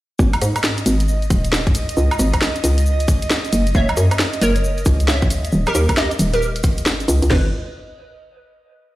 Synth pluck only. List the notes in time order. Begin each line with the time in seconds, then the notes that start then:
3.75 C#5 E5
4.41 A#4 C#5
5.08 C#5 E5
5.67 G4 A#4
5.97 G4 D#5
6.34 G4 A#4
7.31 B4